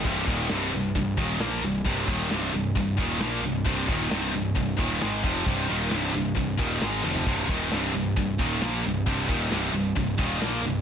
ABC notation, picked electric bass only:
X:1
M:4/4
L:1/8
Q:1/4=133
K:Cm
V:1 name="Picked electric bass" clef=bass
C,,, E,,, C,,, C,,, C,,, E,,, B,,, C,,, | C,,, E,,, C,,, C,,, C,,, E,,, B,,, C,,, | C,,, E,,, C,,, C,,, C,,, E,,, A,,, F,,, | C,,, E,,, C,,, C,,, C,,, E,,, A,,, F,,, |
C,,, E,,, C,,, C,,, C,,, E,,, B,,, C,,, | C,,, E,,, C,,, C,,, C,,, E,,, B,,, C,,, |]